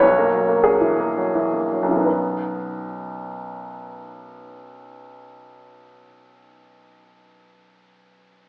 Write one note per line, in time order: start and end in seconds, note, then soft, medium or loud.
0.00 1.81 B1 medium
0.00 0.64 C#5 medium
0.18 0.43 A#3 soft
0.33 0.59 F#3 soft
0.48 0.75 A#3 soft
0.63 0.92 F#3 soft
0.63 0.98 G#4 medium
0.81 1.09 E3 soft
1.00 1.28 A#3 soft
1.17 1.46 F#3 soft
1.35 1.64 E3 soft
1.53 1.83 A#3 soft
1.72 1.89 F#3 soft
1.83 5.85 B1 soft
1.87 5.89 F#2 soft
1.87 2.07 E3 soft
1.91 5.93 F#3 soft
1.95 5.98 B3 soft
2.00 6.02 D#4 soft
2.00 6.06 F#4 soft
2.06 6.08 B4 soft